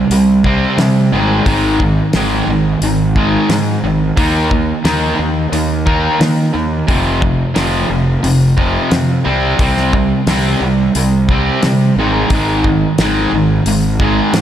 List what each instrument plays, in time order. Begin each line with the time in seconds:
0.10 fingered electric bass C2, distorted electric guitar C3 G3, open hi-hat
0.44 distorted electric guitar C3 G3 C4, kick
0.77 fingered electric bass C3, distorted electric guitar C3 G3, snare, open hi-hat
1.12 fingered electric bass G#1, distorted electric guitar G#2 D#3 G#3
1.46 fingered electric bass G#1, distorted electric guitar G#2 D#3 G#3, kick, open hi-hat
1.80 distorted electric guitar G#2 D#3, kick
2.13 fingered electric bass G#1, distorted electric guitar G#2 D#3 G#3, snare, open hi-hat
2.47 fingered electric bass G#1, distorted electric guitar G#2 D#3
2.81 fingered electric bass G#1, distorted electric guitar G#2 D#3, open hi-hat
3.16 distorted electric guitar G#2 D#3 G#3, kick
3.49 fingered electric bass G#2, distorted electric guitar G#2 D#3, snare, open hi-hat
3.83 fingered electric bass G#1, distorted electric guitar G#2 D#3
4.17 fingered electric bass D#2, distorted electric guitar D#3 A#3 D#4, kick, open hi-hat
4.51 distorted electric guitar D#3 A#3, kick
4.84 fingered electric bass D#2, distorted electric guitar D#3 A#3 D#4, snare, open hi-hat
5.19 fingered electric bass D#2, distorted electric guitar D#3 A#3
5.52 fingered electric bass D#2, distorted electric guitar D#3 A#3, open hi-hat
5.86 distorted electric guitar D#3 A#3 D#4, kick
6.19 distorted electric guitar D#3 A#3, fingered electric bass D#3, snare, open hi-hat
6.54 fingered electric bass D#2, distorted electric guitar D#3 A#3
6.88 fingered electric bass F1, distorted electric guitar F2 C3 F3, kick, open hi-hat
7.21 distorted electric guitar F2 C3, kick
7.54 fingered electric bass F1, distorted electric guitar F2 C3 F3, snare, open hi-hat
7.89 fingered electric bass F1, distorted electric guitar F2 C3
8.23 fingered electric bass F1, distorted electric guitar F2 C3, open hi-hat
8.57 distorted electric guitar F2 C3 F3, kick
8.91 distorted electric guitar F2 C3, fingered electric bass F2, snare, open hi-hat
9.25 fingered electric bass C2, distorted electric guitar C3 G3 C4
9.59 fingered electric bass C2, distorted electric guitar C3 G3 C4, kick, open hi-hat
9.77 snare
9.93 distorted electric guitar C3 G3, kick
10.27 fingered electric bass C2, distorted electric guitar C3 G3 C4, snare, open hi-hat
10.60 fingered electric bass C2, distorted electric guitar C3 G3
10.95 fingered electric bass C2, distorted electric guitar C3 G3, open hi-hat
11.29 distorted electric guitar C3 G3 C4, kick
11.63 fingered electric bass C3, distorted electric guitar C3 G3, snare, open hi-hat
11.96 fingered electric bass G#1, distorted electric guitar G#2 D#3 G#3
12.30 fingered electric bass G#1, distorted electric guitar G#2 D#3, kick, open hi-hat
12.34 distorted electric guitar G#3
12.64 distorted electric guitar G#2 D#3, kick
12.98 fingered electric bass G#1, distorted electric guitar G#2 D#3 G#3, snare, open hi-hat
13.32 fingered electric bass G#1, distorted electric guitar G#2 D#3
13.66 fingered electric bass G#1, distorted electric guitar G#2 D#3, open hi-hat
14.00 distorted electric guitar G#2 D#3 G#3, kick
14.33 fingered electric bass G#2, distorted electric guitar G#2 D#3, snare, open hi-hat